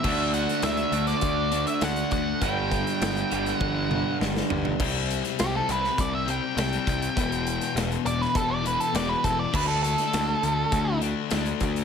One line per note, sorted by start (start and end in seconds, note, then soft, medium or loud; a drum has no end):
0.00 1.51 D3 medium
0.00 0.30 E5 loud
0.04 0.45 D2 loud
0.04 1.51 A3 medium
0.04 1.51 D4 medium
0.04 kick loud
0.04 crash loud
0.34 0.62 F#5 loud
0.34 closed hi-hat medium
0.49 snare soft
0.49 closed hi-hat medium
0.62 0.84 D2 loud
0.62 1.07 E5 loud
0.62 snare loud
0.62 closed hi-hat loud
0.77 closed hi-hat soft
0.92 1.13 D2 loud
0.92 2.41 A3 medium
0.92 4.43 D4 medium
0.92 closed hi-hat medium
0.96 2.42 D3 medium
1.07 1.67 D5 loud
1.07 snare soft
1.07 closed hi-hat soft
1.21 1.64 D2 loud
1.21 kick loud
1.21 closed hi-hat loud
1.52 1.81 D3 medium
1.52 1.81 A3 medium
1.52 1.84 D4 medium
1.52 closed hi-hat medium
1.67 1.81 E5 medium
1.67 closed hi-hat medium
1.81 2.02 D2 medium
1.81 2.40 D3 medium
1.81 2.41 A3 loud
1.81 4.81 D4 medium
1.81 2.11 F#5 loud
1.81 snare loud
1.81 closed hi-hat loud
1.96 closed hi-hat medium
2.11 2.33 D2 loud
2.11 2.40 F#5 medium
2.11 kick loud
2.11 closed hi-hat medium
2.41 2.83 G1 loud
2.41 3.88 G2 medium
2.41 3.89 D3 loud
2.41 3.88 G3 loud
2.41 3.55 G5 medium
2.41 kick loud
2.41 closed hi-hat loud
2.72 kick medium
2.72 snare soft
2.72 closed hi-hat medium
2.87 snare soft
2.87 closed hi-hat medium
3.01 3.22 G1 loud
3.01 snare loud
3.01 closed hi-hat loud
3.17 closed hi-hat soft
3.30 3.52 G1 loud
3.30 4.79 G2 medium
3.30 4.78 D3 medium
3.30 4.77 G3 medium
3.30 closed hi-hat medium
3.46 snare soft
3.46 closed hi-hat medium
3.55 4.17 F#5 medium
3.60 4.02 G1 medium
3.60 kick loud
3.60 high tom medium
3.89 4.18 G2 medium
3.89 4.19 D3 medium
3.89 4.18 G3 medium
3.89 mid tom medium
4.19 4.41 G1 medium
4.19 4.77 G2 medium
4.19 4.78 D3 medium
4.19 4.79 G3 medium
4.19 snare loud
4.37 snare medium
4.50 4.71 G1 medium
4.50 floor tom loud
4.65 floor tom loud
4.78 5.21 C2 loud
4.78 6.25 C3 medium
4.78 6.26 G3 medium
4.78 6.25 C4 loud
4.78 kick loud
4.78 crash loud
5.11 closed hi-hat medium
5.25 snare soft
5.25 closed hi-hat medium
5.39 5.60 C2 loud
5.39 5.54 G4 medium
5.39 snare loud
5.39 closed hi-hat loud
5.56 5.69 A4 loud
5.69 5.89 C2 loud
5.69 5.99 B4 medium
5.69 closed hi-hat medium
5.84 snare soft
5.98 6.39 C2 loud
5.98 6.14 D5 medium
5.98 kick loud
5.98 closed hi-hat loud
6.15 6.28 E5 medium
6.26 6.54 C3 medium
6.26 6.56 G3 medium
6.26 6.55 C4 medium
6.26 6.58 G5 loud
6.26 closed hi-hat medium
6.55 6.77 C2 loud
6.55 7.14 C3 medium
6.55 7.15 G3 medium
6.55 7.15 C4 medium
6.55 snare loud
6.55 closed hi-hat loud
6.60 7.74 G5 loud
6.73 closed hi-hat medium
6.87 7.07 C2 loud
6.87 kick loud
6.87 closed hi-hat medium
7.02 closed hi-hat medium
7.15 7.58 E1 loud
7.15 8.62 E2 medium
7.15 8.63 B2 medium
7.15 8.62 E3 loud
7.15 kick loud
7.15 closed hi-hat loud
7.32 closed hi-hat medium
7.47 closed hi-hat medium
7.61 snare soft
7.61 closed hi-hat medium
7.75 7.96 E1 loud
7.75 snare loud
7.75 closed hi-hat loud
7.92 closed hi-hat medium
8.05 8.26 E1 loud
8.05 8.22 D5 loud
8.05 closed hi-hat medium
8.21 8.35 B4 medium
8.21 snare soft
8.35 8.76 E1 loud
8.35 8.50 A4 medium
8.35 kick loud
8.35 closed hi-hat loud
8.50 8.64 D5 loud
8.63 8.92 E2 medium
8.63 8.93 B2 medium
8.63 8.92 E3 loud
8.63 8.80 B4 loud
8.63 closed hi-hat medium
8.80 8.94 A4 medium
8.80 closed hi-hat medium
8.93 9.14 E1 loud
8.93 9.51 E2 medium
8.93 9.51 B2 medium
8.93 9.53 E3 loud
8.93 9.09 D5 loud
8.93 snare loud
8.93 closed hi-hat loud
9.09 9.24 B4 loud
9.24 9.44 E1 loud
9.24 9.38 A4 medium
9.24 kick medium
9.24 closed hi-hat medium
9.39 9.53 D5 medium
9.51 9.94 D2 loud
9.51 10.99 D3 loud
9.51 11.00 A3 loud
9.51 11.00 D4 loud
9.51 kick loud
9.51 crash loud
9.55 9.67 B4 loud
9.68 9.81 A4 loud
9.83 10.98 A4 loud
9.83 snare soft
9.83 closed hi-hat medium
9.98 snare soft
9.98 closed hi-hat medium
10.13 10.34 D2 loud
10.13 snare loud
10.13 closed hi-hat loud
10.43 10.63 D2 loud
10.43 closed hi-hat medium
10.72 11.13 D2 loud
10.72 kick loud
10.72 closed hi-hat loud
11.01 11.29 D3 medium
11.01 11.30 A3 medium
11.01 11.33 D4 medium
11.01 closed hi-hat medium
11.31 11.52 D2 loud
11.31 11.84 D3 medium
11.31 11.84 A3 loud
11.31 11.84 D4 loud
11.31 snare loud
11.31 closed hi-hat loud
11.46 closed hi-hat medium
11.60 11.81 D2 loud
11.60 kick medium
11.60 closed hi-hat medium
11.76 closed hi-hat medium